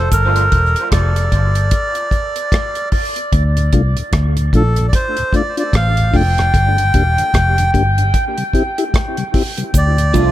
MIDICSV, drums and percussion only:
0, 0, Header, 1, 2, 480
1, 0, Start_track
1, 0, Key_signature, -1, "minor"
1, 0, Tempo, 801603
1, 71, Time_signature, 4, 2, 24, 8
1, 6177, End_track
2, 0, Start_track
2, 0, Title_t, "Drums"
2, 70, Note_on_c, 9, 36, 123
2, 70, Note_on_c, 9, 42, 94
2, 74, Note_on_c, 9, 69, 73
2, 130, Note_off_c, 9, 36, 0
2, 130, Note_off_c, 9, 42, 0
2, 134, Note_off_c, 9, 69, 0
2, 214, Note_on_c, 9, 42, 59
2, 274, Note_off_c, 9, 42, 0
2, 311, Note_on_c, 9, 42, 78
2, 312, Note_on_c, 9, 36, 93
2, 371, Note_off_c, 9, 42, 0
2, 372, Note_off_c, 9, 36, 0
2, 455, Note_on_c, 9, 42, 56
2, 515, Note_off_c, 9, 42, 0
2, 550, Note_on_c, 9, 36, 109
2, 550, Note_on_c, 9, 42, 104
2, 554, Note_on_c, 9, 37, 113
2, 610, Note_off_c, 9, 36, 0
2, 610, Note_off_c, 9, 42, 0
2, 614, Note_off_c, 9, 37, 0
2, 696, Note_on_c, 9, 42, 54
2, 756, Note_off_c, 9, 42, 0
2, 790, Note_on_c, 9, 36, 86
2, 791, Note_on_c, 9, 42, 75
2, 850, Note_off_c, 9, 36, 0
2, 851, Note_off_c, 9, 42, 0
2, 930, Note_on_c, 9, 42, 57
2, 990, Note_off_c, 9, 42, 0
2, 1025, Note_on_c, 9, 42, 107
2, 1028, Note_on_c, 9, 36, 116
2, 1085, Note_off_c, 9, 42, 0
2, 1088, Note_off_c, 9, 36, 0
2, 1168, Note_on_c, 9, 42, 52
2, 1228, Note_off_c, 9, 42, 0
2, 1265, Note_on_c, 9, 36, 84
2, 1271, Note_on_c, 9, 42, 53
2, 1325, Note_off_c, 9, 36, 0
2, 1330, Note_off_c, 9, 42, 0
2, 1412, Note_on_c, 9, 42, 56
2, 1472, Note_off_c, 9, 42, 0
2, 1509, Note_on_c, 9, 36, 124
2, 1512, Note_on_c, 9, 42, 91
2, 1521, Note_on_c, 9, 37, 117
2, 1569, Note_off_c, 9, 36, 0
2, 1572, Note_off_c, 9, 42, 0
2, 1581, Note_off_c, 9, 37, 0
2, 1649, Note_on_c, 9, 42, 46
2, 1708, Note_off_c, 9, 42, 0
2, 1748, Note_on_c, 9, 46, 75
2, 1750, Note_on_c, 9, 36, 90
2, 1808, Note_off_c, 9, 46, 0
2, 1810, Note_off_c, 9, 36, 0
2, 1893, Note_on_c, 9, 42, 58
2, 1953, Note_off_c, 9, 42, 0
2, 1991, Note_on_c, 9, 36, 108
2, 1991, Note_on_c, 9, 42, 91
2, 2051, Note_off_c, 9, 36, 0
2, 2051, Note_off_c, 9, 42, 0
2, 2137, Note_on_c, 9, 42, 57
2, 2196, Note_off_c, 9, 42, 0
2, 2231, Note_on_c, 9, 42, 77
2, 2233, Note_on_c, 9, 36, 89
2, 2291, Note_off_c, 9, 42, 0
2, 2293, Note_off_c, 9, 36, 0
2, 2375, Note_on_c, 9, 42, 55
2, 2435, Note_off_c, 9, 42, 0
2, 2471, Note_on_c, 9, 36, 105
2, 2471, Note_on_c, 9, 42, 101
2, 2475, Note_on_c, 9, 37, 113
2, 2531, Note_off_c, 9, 36, 0
2, 2531, Note_off_c, 9, 42, 0
2, 2535, Note_off_c, 9, 37, 0
2, 2615, Note_on_c, 9, 42, 61
2, 2675, Note_off_c, 9, 42, 0
2, 2712, Note_on_c, 9, 36, 87
2, 2716, Note_on_c, 9, 42, 69
2, 2772, Note_off_c, 9, 36, 0
2, 2776, Note_off_c, 9, 42, 0
2, 2852, Note_on_c, 9, 42, 57
2, 2912, Note_off_c, 9, 42, 0
2, 2952, Note_on_c, 9, 36, 118
2, 2953, Note_on_c, 9, 42, 102
2, 3012, Note_off_c, 9, 36, 0
2, 3012, Note_off_c, 9, 42, 0
2, 3094, Note_on_c, 9, 42, 51
2, 3154, Note_off_c, 9, 42, 0
2, 3189, Note_on_c, 9, 36, 77
2, 3197, Note_on_c, 9, 42, 55
2, 3249, Note_off_c, 9, 36, 0
2, 3257, Note_off_c, 9, 42, 0
2, 3338, Note_on_c, 9, 42, 57
2, 3397, Note_off_c, 9, 42, 0
2, 3433, Note_on_c, 9, 36, 124
2, 3435, Note_on_c, 9, 42, 94
2, 3445, Note_on_c, 9, 37, 112
2, 3493, Note_off_c, 9, 36, 0
2, 3495, Note_off_c, 9, 42, 0
2, 3504, Note_off_c, 9, 37, 0
2, 3575, Note_on_c, 9, 42, 45
2, 3635, Note_off_c, 9, 42, 0
2, 3674, Note_on_c, 9, 36, 95
2, 3677, Note_on_c, 9, 46, 76
2, 3734, Note_off_c, 9, 36, 0
2, 3737, Note_off_c, 9, 46, 0
2, 3821, Note_on_c, 9, 42, 62
2, 3826, Note_on_c, 9, 37, 76
2, 3881, Note_off_c, 9, 42, 0
2, 3886, Note_off_c, 9, 37, 0
2, 3915, Note_on_c, 9, 36, 122
2, 3918, Note_on_c, 9, 42, 92
2, 3975, Note_off_c, 9, 36, 0
2, 3978, Note_off_c, 9, 42, 0
2, 4061, Note_on_c, 9, 42, 60
2, 4121, Note_off_c, 9, 42, 0
2, 4155, Note_on_c, 9, 42, 83
2, 4156, Note_on_c, 9, 36, 93
2, 4215, Note_off_c, 9, 42, 0
2, 4216, Note_off_c, 9, 36, 0
2, 4301, Note_on_c, 9, 42, 52
2, 4361, Note_off_c, 9, 42, 0
2, 4395, Note_on_c, 9, 36, 103
2, 4396, Note_on_c, 9, 42, 100
2, 4400, Note_on_c, 9, 37, 106
2, 4455, Note_off_c, 9, 36, 0
2, 4456, Note_off_c, 9, 42, 0
2, 4460, Note_off_c, 9, 37, 0
2, 4539, Note_on_c, 9, 42, 59
2, 4599, Note_off_c, 9, 42, 0
2, 4635, Note_on_c, 9, 36, 92
2, 4638, Note_on_c, 9, 42, 69
2, 4695, Note_off_c, 9, 36, 0
2, 4698, Note_off_c, 9, 42, 0
2, 4778, Note_on_c, 9, 42, 56
2, 4838, Note_off_c, 9, 42, 0
2, 4874, Note_on_c, 9, 36, 110
2, 4874, Note_on_c, 9, 42, 102
2, 4933, Note_off_c, 9, 36, 0
2, 4934, Note_off_c, 9, 42, 0
2, 5016, Note_on_c, 9, 42, 55
2, 5075, Note_off_c, 9, 42, 0
2, 5111, Note_on_c, 9, 36, 75
2, 5118, Note_on_c, 9, 42, 54
2, 5171, Note_off_c, 9, 36, 0
2, 5178, Note_off_c, 9, 42, 0
2, 5258, Note_on_c, 9, 42, 53
2, 5318, Note_off_c, 9, 42, 0
2, 5353, Note_on_c, 9, 36, 126
2, 5354, Note_on_c, 9, 42, 86
2, 5363, Note_on_c, 9, 37, 118
2, 5413, Note_off_c, 9, 36, 0
2, 5414, Note_off_c, 9, 42, 0
2, 5423, Note_off_c, 9, 37, 0
2, 5493, Note_on_c, 9, 42, 48
2, 5553, Note_off_c, 9, 42, 0
2, 5593, Note_on_c, 9, 36, 94
2, 5593, Note_on_c, 9, 46, 81
2, 5653, Note_off_c, 9, 36, 0
2, 5653, Note_off_c, 9, 46, 0
2, 5734, Note_on_c, 9, 42, 64
2, 5793, Note_off_c, 9, 42, 0
2, 5832, Note_on_c, 9, 42, 92
2, 5833, Note_on_c, 9, 36, 117
2, 5837, Note_on_c, 9, 69, 75
2, 5892, Note_off_c, 9, 42, 0
2, 5893, Note_off_c, 9, 36, 0
2, 5897, Note_off_c, 9, 69, 0
2, 5978, Note_on_c, 9, 42, 57
2, 6038, Note_off_c, 9, 42, 0
2, 6073, Note_on_c, 9, 42, 82
2, 6075, Note_on_c, 9, 36, 91
2, 6080, Note_on_c, 9, 69, 48
2, 6133, Note_off_c, 9, 42, 0
2, 6135, Note_off_c, 9, 36, 0
2, 6140, Note_off_c, 9, 69, 0
2, 6177, End_track
0, 0, End_of_file